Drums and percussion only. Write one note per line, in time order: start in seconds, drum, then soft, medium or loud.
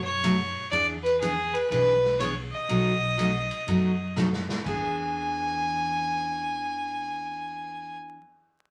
0.24 hi-hat pedal medium
0.24 ride medium
0.73 ride medium
1.06 ride soft
1.22 hi-hat pedal medium
1.22 ride medium
1.55 ride soft
1.72 ride medium
2.04 snare soft
2.20 hi-hat pedal medium
2.20 ride medium
2.69 ride medium
3.19 hi-hat pedal medium
3.19 ride medium
3.51 ride soft
3.68 ride medium
4.17 snare medium
4.17 hi-hat pedal medium
4.33 snare medium
4.49 snare medium
4.66 kick medium
4.66 crash medium